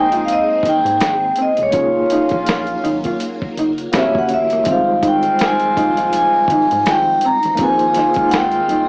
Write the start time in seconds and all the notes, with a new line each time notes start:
Already playing: A#1 G#3 A#3 C4 D#4 G#4 C5
0.12 F4, closed hi-hat
0.25 F5, closed hi-hat
0.33 D#5
0.63 G#1 D#4, kick, closed hi-hat
0.69 G5
0.85 G#2, closed hi-hat
1.01 G#1, finger snap, snare, closed hi-hat
1.36 C4, closed hi-hat
1.42 D#5
1.57 F1, closed hi-hat
1.63 C#5
1.71 F#1 F#3 A#3 C#4 D#4 F4, kick, closed hi-hat
1.75 F4 G#4 C#5
2.10 A#1 D#4, closed hi-hat
2.29 A#1, kick, closed hi-hat
2.47 finger snap, muted clean electric guitar stroke, snare, closed hi-hat
2.67 closed hi-hat
2.84 G#1 D#4, closed hi-hat
3.04 F4, kick, closed hi-hat
3.20 closed hi-hat
3.42 kick
3.57 F#1 D#4, closed hi-hat
3.78 closed hi-hat
3.92 E1 A#3 C4 C#4 E4 F#4 G4, finger snap, snare, closed hi-hat
3.96 C5 E5
4.03 C#5
4.15 F#1 F#5, kick
4.29 G1, muted clean electric guitar stroke, closed hi-hat
4.34 E5
4.50 A#3, closed hi-hat
4.64 G#1 D#3 F3 G#3 C4 D#4 F4, kick, closed hi-hat
4.70 G3 C5 F5
5.03 D#4, kick, closed hi-hat
5.07 G5
5.23 closed hi-hat
5.39 finger snap, muted clean electric guitar stroke, snare, closed hi-hat
5.43 G#5
5.60 closed hi-hat
5.77 A#1 D#4, kick, closed hi-hat
5.97 F4, closed hi-hat
6.13 G#5, closed hi-hat
6.48 G#1 D#4, kick, closed hi-hat
6.71 G#2, closed hi-hat
6.86 G#1 G5, finger snap, snare, closed hi-hat
7.21 C4, closed hi-hat
7.26 A#5
7.43 A1, closed hi-hat
7.55 A#3 D#4 F4, kick, closed hi-hat
7.59 A#1 G#3 A#3 C4 F4 G#4 G#5
7.63 B4
7.69 C5
7.79 closed hi-hat
7.94 C#2 D#4, snare, closed hi-hat
8.14 C#2, kick, closed hi-hat
8.29 F#5, muted clean electric guitar stroke, closed hi-hat
8.34 G5, finger snap, snare
8.51 closed hi-hat
8.68 C2 D#4, closed hi-hat